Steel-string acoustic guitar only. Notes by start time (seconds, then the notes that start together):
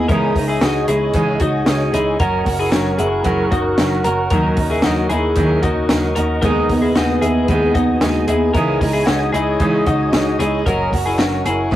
Already playing: B3
0.10 C#3 E3 G#3 C#4 D#4 G#4
0.36 G#3 C#4 D#4 G#4
0.62 G#3 C#4 D#4 G#4
0.88 G#3 C#4 D#4 G#4
1.14 C#3 E3 G#3 C#4 D#4 G#4
1.39 G#3 C#4 D#4 G#4
1.66 G#3 C#4 D#4 G#4
1.92 G#3 C#4 D#4 G#4
2.19 F#3 C#4 F#4 A#4
2.44 C#4 F#4 A#4
2.71 F#3 C#4 F#4 A#4
2.98 C#4 F#4 A#4
3.24 F#3 C#4 F#4 A#4
3.50 C#4 F#4 A#4
3.78 F#3 C#4 F#4 A#4
4.05 C#4 F#4 A#4
4.31 D#3 F#3 C#4 D#4 A#4
4.58 C#4 D#4 A#4
4.84 F#3 C#4 D#4 A#4
5.11 C#4 D#4 A#4
5.36 D#3 F#3 C#4 D#4 A#4
5.62 C#4 D#4 A#4
5.89 F#3 C#4 D#4 A#4
6.17 C#4 D#4 A#4
6.43 D#3 G#3 B3 D#4 G#4
6.69 B3 D#4 G#4
6.96 G#3 B3 D#4 G#4
7.22 B3 D#4 G#4
7.48 D#3 G#3 B3 D#4 G#4
7.74 B3 D#4 G#4
8.01 G#3 B3 D#4 G#4
8.27 B3 D#4 G#4
8.55 C#3 E3 G#3 C#4 D#4 G#4
8.81 G#3 C#4 D#4 G#4
9.06 G#3 C#4 D#4 G#4
9.33 G#3 C#4 D#4 G#4
9.60 C#3 E3 G#3 C#4 D#4 G#4
9.87 G#3 C#4 D#4 G#4
10.13 G#3 C#4 D#4 G#4
10.39 G#3 C#4 D#4 G#4
10.67 F#3 C#4 F#4 A#4
10.92 C#4 F#4 A#4
11.18 F#3 C#4 F#4 A#4
11.45 C#4 F#4 A#4
11.72 C#3 G#3